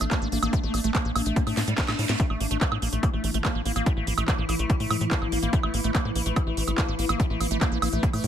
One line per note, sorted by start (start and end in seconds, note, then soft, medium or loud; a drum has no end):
0.00 0.07 A1 medium
0.00 2.21 A3 medium
0.00 0.05 A3 medium
0.00 2.22 D4 medium
0.00 closed hi-hat medium
0.00 high woodblock soft
0.11 0.21 A#3 loud
0.11 kick loud
0.11 clap loud
0.11 closed hi-hat medium
0.22 0.28 A1 medium
0.22 0.28 A#3 medium
0.32 0.38 A1 loud
0.32 0.39 A#3 medium
0.32 open hi-hat loud
0.43 0.49 A1 medium
0.43 0.52 A#3 loud
0.43 closed hi-hat medium
0.43 high woodblock medium
0.53 0.60 A3 medium
0.53 kick loud
0.53 closed hi-hat medium
0.63 0.70 A1 medium
0.63 0.73 A3 medium
0.74 0.80 A1 loud
0.74 0.80 A#3 medium
0.74 open hi-hat loud
0.74 high woodblock soft
0.84 0.90 A1 medium
0.84 0.91 A3 loud
0.84 closed hi-hat medium
0.95 1.05 A#3 loud
0.95 kick loud
0.95 clap loud
0.95 closed hi-hat medium
1.05 1.11 A#1 medium
1.05 1.12 A#3 medium
1.15 1.22 A#1 loud
1.15 1.22 A#3 medium
1.15 open hi-hat loud
1.15 high woodblock medium
1.26 1.32 A#1 medium
1.26 1.38 A3 medium
1.26 closed hi-hat medium
1.36 1.43 A#3 medium
1.36 kick loud
1.36 closed hi-hat medium
1.36 reverse cymbal medium
1.47 1.53 A2 medium
1.47 1.57 A3 medium
1.47 open hi-hat medium
1.47 high woodblock soft
1.57 1.63 A2 loud
1.57 1.61 A#3 loud
1.57 snare medium
1.57 open hi-hat loud
1.68 1.74 A2 medium
1.68 1.74 G3 medium
1.68 closed hi-hat medium
1.78 1.85 A3 medium
1.78 kick loud
1.78 snare medium
1.78 clap loud
1.78 closed hi-hat medium
1.88 1.95 A2 medium
1.88 1.92 A3 medium
1.88 snare medium
1.88 high woodblock medium
1.99 2.05 A2 loud
1.99 2.05 G3 medium
1.99 open hi-hat loud
2.09 2.15 A2 medium
2.09 2.19 A3 medium
2.09 snare medium
2.09 closed hi-hat medium
2.20 8.27 E3 medium
2.20 2.26 A3 medium
2.20 8.27 E4 medium
2.20 kick loud
2.20 closed hi-hat medium
2.30 2.36 A1 medium
2.30 2.40 A3 medium
2.30 high woodblock soft
2.40 2.47 A1 loud
2.40 2.47 A#3 medium
2.40 open hi-hat loud
2.51 2.57 A1 medium
2.51 2.58 A3 loud
2.51 closed hi-hat medium
2.61 2.71 A#3 loud
2.61 kick loud
2.61 clap loud
2.61 closed hi-hat medium
2.72 2.78 A2 medium
2.72 2.78 A#3 medium
2.72 high woodblock medium
2.82 2.88 A#1 loud
2.82 2.89 A#3 medium
2.82 open hi-hat loud
2.93 2.99 A#1 medium
2.93 3.04 A3 medium
2.93 closed hi-hat medium
3.03 3.10 A#3 medium
3.03 kick loud
3.03 closed hi-hat medium
3.03 high woodblock soft
3.13 3.20 A1 medium
3.13 3.23 A3 medium
3.24 3.30 A1 loud
3.24 3.30 A3 medium
3.24 open hi-hat loud
3.34 3.40 A1 medium
3.34 3.38 A3 medium
3.34 closed hi-hat medium
3.45 3.55 A#3 loud
3.45 kick loud
3.45 clap loud
3.45 closed hi-hat medium
3.45 high woodblock medium
3.55 3.61 A1 medium
3.55 3.62 A#3 medium
3.65 3.72 A1 loud
3.65 3.72 A#3 medium
3.65 open hi-hat loud
3.76 3.82 A1 loud
3.76 3.86 A#3 loud
3.76 closed hi-hat medium
3.76 high woodblock soft
3.86 kick loud
3.86 closed hi-hat medium
3.97 4.03 A1 medium
3.97 4.07 A3 medium
4.07 4.13 A1 loud
4.07 4.14 A#3 medium
4.07 open hi-hat loud
4.18 4.24 A1 medium
4.18 4.24 A3 loud
4.18 closed hi-hat medium
4.18 high woodblock medium
4.28 4.38 A#3 loud
4.28 kick loud
4.28 clap loud
4.28 closed hi-hat medium
4.38 4.45 A#1 medium
4.38 4.45 A#3 medium
4.49 4.55 A#1 loud
4.49 4.55 A#3 medium
4.49 open hi-hat loud
4.49 high woodblock soft
4.59 4.65 A#1 medium
4.59 4.71 A3 medium
4.59 closed hi-hat medium
4.70 4.76 A#3 medium
4.70 kick loud
4.70 closed hi-hat medium
4.80 4.86 A2 medium
4.80 4.90 A3 medium
4.80 open hi-hat medium
4.90 4.97 A2 loud
4.90 4.97 A3 medium
4.90 open hi-hat loud
4.90 high woodblock medium
5.01 5.07 A2 medium
5.01 5.05 A3 medium
5.01 closed hi-hat medium
5.11 5.21 A#3 loud
5.11 kick loud
5.11 clap loud
5.11 closed hi-hat medium
5.22 5.28 A1 medium
5.22 5.28 A#3 medium
5.22 high woodblock soft
5.32 5.38 A1 loud
5.32 5.39 A#3 medium
5.32 open hi-hat loud
5.43 5.49 A1 loud
5.43 5.52 A#3 loud
5.43 closed hi-hat medium
5.53 kick loud
5.53 closed hi-hat medium
5.63 5.70 A1 medium
5.63 5.73 A3 medium
5.63 high woodblock medium
5.74 5.80 A1 loud
5.74 5.80 A#3 medium
5.74 open hi-hat loud
5.84 5.90 A1 medium
5.84 5.91 A3 loud
5.84 closed hi-hat medium
5.95 6.05 A#3 loud
5.95 kick loud
5.95 clap loud
5.95 closed hi-hat medium
5.95 high woodblock soft
6.05 6.11 A2 medium
6.05 6.12 A#3 medium
6.15 6.22 A#1 loud
6.15 6.22 A#3 medium
6.15 open hi-hat loud
6.26 6.32 A#1 medium
6.26 6.38 A3 medium
6.26 closed hi-hat medium
6.36 6.43 A#3 medium
6.36 kick loud
6.36 closed hi-hat medium
6.36 high woodblock medium
6.47 6.53 A1 medium
6.47 6.57 A3 medium
6.57 6.63 A1 loud
6.57 6.64 A3 medium
6.57 open hi-hat loud
6.68 6.74 A1 medium
6.68 6.72 A3 medium
6.68 closed hi-hat medium
6.68 high woodblock soft
6.78 6.88 A#3 loud
6.78 kick loud
6.78 clap loud
6.78 closed hi-hat medium
6.88 6.95 A1 medium
6.88 6.95 A#3 medium
6.99 7.05 A1 loud
6.99 7.05 A#3 medium
6.99 open hi-hat loud
7.09 7.15 A1 medium
7.09 7.19 A#3 loud
7.09 closed hi-hat medium
7.09 high woodblock medium
7.20 kick loud
7.20 closed hi-hat medium
7.30 7.36 A1 medium
7.30 7.40 A3 medium
7.40 7.47 A1 loud
7.40 7.47 A#3 medium
7.40 open hi-hat loud
7.40 high woodblock soft
7.51 7.57 A1 medium
7.51 7.58 A3 loud
7.51 closed hi-hat medium
7.61 7.71 A#3 loud
7.61 kick loud
7.61 clap loud
7.61 closed hi-hat medium
7.72 7.78 A#1 medium
7.72 7.78 A#3 medium
7.82 7.88 A#1 loud
7.82 7.89 A#3 medium
7.82 open hi-hat loud
7.82 high woodblock medium
7.93 7.99 A#1 medium
7.93 8.04 A3 medium
7.93 closed hi-hat medium
8.03 8.10 A#3 medium
8.03 kick loud
8.03 closed hi-hat medium
8.13 8.20 A2 medium
8.13 8.23 A3 medium
8.13 open hi-hat medium
8.13 high woodblock soft
8.24 8.27 A2 loud
8.24 8.27 A3 medium
8.24 open hi-hat loud